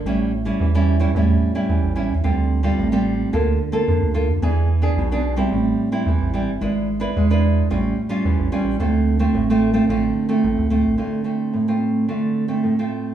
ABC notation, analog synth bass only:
X:1
M:4/4
L:1/16
Q:1/4=110
K:Dm
V:1 name="Analog synth bass" clef=bass
A,,,4 E,,4 E,,2 z2 E,, A,,,2 E,, | D,,4 A,,,4 D,,2 z2 F,, D,,2 F,, | E,,4 =B,,,4 A,,,2 z2 E,, A,,,2 G,,, | ^G,,,4 E,,4 A,,,2 z2 E,, A,,, z A,,, |
D,,4 A,,,4 A,,,2 z2 A,,, D,,2 A,,, | z16 |]